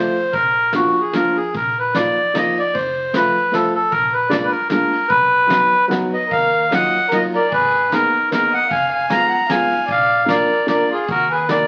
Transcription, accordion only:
0.00 0.34 C5 medium
0.32 0.74 A#4 medium
0.75 1.02 F#4 medium
1.01 1.14 G#4 medium
1.14 1.37 A#4 medium
1.36 1.55 G#4 medium
1.56 1.78 A#4 medium
1.79 1.96 B4 medium
1.95 2.36 D5 medium
2.37 2.58 D#5 medium
2.59 2.76 D5 medium
2.74 3.15 C5 medium
3.15 3.55 B4 medium
3.54 3.74 A4 medium
3.75 3.93 A4 medium
3.91 4.14 A#4 medium
4.13 4.31 B4 medium
4.29 4.47 D5 medium
4.44 4.51 B4 soft
4.51 4.68 A#4 medium
4.69 5.11 A#4 medium
5.08 5.85 B4 loud
6.13 6.32 D#5 medium
6.32 6.73 F5 loud
6.74 7.14 F#5 loud
7.13 7.23 D#5 medium
7.35 7.53 D5 medium
7.53 7.93 B4 medium
7.93 8.29 A#4 medium
8.31 8.53 A#4 medium
8.54 8.71 F#5 loud
8.72 8.93 G#5 medium
8.95 9.12 G#5 medium
9.11 9.32 A#5 loud
9.34 9.51 A#5 medium
9.50 9.90 G#5 loud
9.91 10.30 F5 loud
10.28 10.67 D5 medium
10.69 10.91 D5 medium
10.92 11.10 G#4 medium
11.10 11.32 A#4 medium
11.30 11.49 B4 medium
11.50 11.67 D5 medium

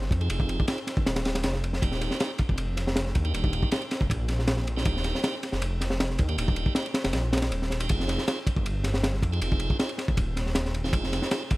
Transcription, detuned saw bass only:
0.11 0.28 F2 medium
0.30 0.57 F1 loud
0.97 1.05 G1 medium
1.06 1.43 D#1 medium
1.44 1.81 F1 medium
1.82 2.10 D#1 medium
2.49 3.14 F1 medium
3.16 3.33 D#2 medium
3.34 3.61 D#1 medium
4.01 4.09 F1 medium
4.10 4.84 A#1 medium
4.86 5.13 D#1 loud
5.53 6.17 F1 medium
6.19 6.36 D#2 medium
6.38 6.65 D#1 loud
7.05 7.13 F1 medium
7.14 7.51 A#1 medium
7.52 7.88 D#1 medium
7.90 8.17 F1 loud
8.56 9.21 G1 medium
9.23 9.40 F2 medium
9.42 9.69 F1 loud
10.08 10.17 G1 medium
10.17 10.92 D#1 medium
10.93 11.21 F1 medium

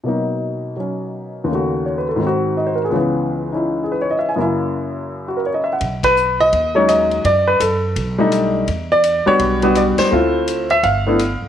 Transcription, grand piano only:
0.04 1.49 B2 soft
0.04 0.75 F#3 soft
0.04 1.50 A#3 soft
0.08 1.51 D#4 medium
0.77 1.49 F#3 soft
0.77 1.51 C#4 soft
1.44 2.19 D#2 soft
1.44 2.21 C#3 soft
1.51 2.22 A3 soft
1.51 2.24 F#4 medium
1.86 2.07 C#5 soft
1.98 2.16 B4 soft
2.09 2.27 A4 soft
2.16 2.91 G#2 medium
2.16 2.92 D#3 soft
2.23 2.94 C4 soft
2.27 2.96 F#4 medium
2.57 2.73 D#5 soft
2.67 2.81 C5 soft
2.75 2.87 A#4 soft
2.85 2.97 G#4 soft
2.90 4.36 C#2 medium
2.90 4.35 C#3 medium
2.90 4.37 B3 soft
2.95 4.38 E3 medium
3.52 4.37 C#4 soft
3.52 4.37 D#4 soft
3.52 4.38 E4 soft
3.84 3.95 G#4 soft
3.92 4.04 B4 soft
4.01 4.17 C#5 medium
4.11 4.25 D#5 medium
4.19 4.31 E5 medium
4.29 4.41 G#5 soft
4.36 5.80 F#2 medium
4.36 5.81 C#3 soft
4.36 5.82 A#3 soft
4.40 5.82 E4 medium
5.28 5.39 F#4 soft
5.37 5.49 A#4 soft
5.46 5.61 C#5 soft
5.54 5.69 D#5 soft
5.64 5.75 E5 soft
5.73 5.85 F#5 soft
6.04 6.37 B4 loud
6.40 6.77 D#5 loud
6.75 7.22 F#3 medium
6.75 7.22 G#3 medium
6.75 7.22 C#4 medium
6.75 7.23 D#4 medium
6.75 6.88 C#5 medium
6.89 7.22 D#5 medium
7.25 7.46 D5 medium
7.48 7.61 B4 medium
7.60 8.51 A4 medium
8.18 8.65 G3 medium
8.18 8.66 A3 medium
8.18 8.66 D4 medium
8.18 8.66 D#4 medium
8.92 9.28 D5 loud
9.26 9.60 G3 medium
9.26 9.60 B3 medium
9.26 9.60 D4 medium
9.26 9.61 F#4 medium
9.26 9.60 C#5 loud
9.63 10.09 G3 medium
9.63 10.10 B3 medium
9.63 10.10 D4 medium
9.63 10.10 F#4 medium
9.63 9.77 B4 medium
9.77 9.82 D5 medium
9.99 10.72 C5 medium
10.11 10.65 A3 medium
10.11 10.65 C4 medium
10.11 10.66 E4 medium
10.11 10.66 F4 medium
10.71 10.84 E5 medium
10.83 11.38 F5 medium
11.07 11.18 A3 medium
11.07 11.18 B3 medium
11.07 11.19 D4 medium
11.07 11.19 E4 medium

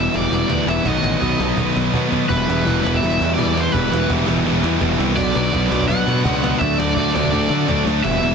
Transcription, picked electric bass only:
0.14 0.26 E1 medium
0.30 0.43 E1 medium
0.50 0.62 D2 medium
0.66 0.78 E1 medium
0.85 0.97 B1 loud
1.03 1.15 A1 medium
1.22 1.33 B1 medium
1.39 1.51 B1 medium
1.57 1.69 B1 medium
1.76 1.87 B1 medium
1.94 2.05 B2 medium
2.12 2.24 B2 medium
2.30 2.44 E1 loud
2.48 2.62 E1 medium
2.67 2.81 E1 loud
2.85 2.99 E1 medium
3.03 3.17 E1 medium
3.21 3.35 E2 loud
3.39 3.67 E2 medium
3.74 3.88 E1 loud
3.92 4.06 E1 medium
4.10 4.24 E1 loud
4.28 4.42 E1 medium
4.46 4.60 E1 medium
4.63 4.78 E2 medium
4.81 4.95 E1 medium
4.99 5.18 C2 loud
5.18 5.32 B1 loud
5.36 5.50 B1 medium
5.53 5.68 B1 loud
5.71 5.85 B1 medium
5.89 6.03 B1 medium
6.07 6.21 B2 loud
6.25 6.54 C#2 medium
6.61 6.75 D2 loud
6.78 6.93 D2 medium
6.96 7.11 D2 medium
7.15 7.29 D2 medium
7.32 7.47 D2 medium
7.50 7.64 D3 medium
7.69 7.83 D2 medium
7.85 8.00 D2 loud
8.05 8.19 E1 loud
8.22 8.35 E1 medium

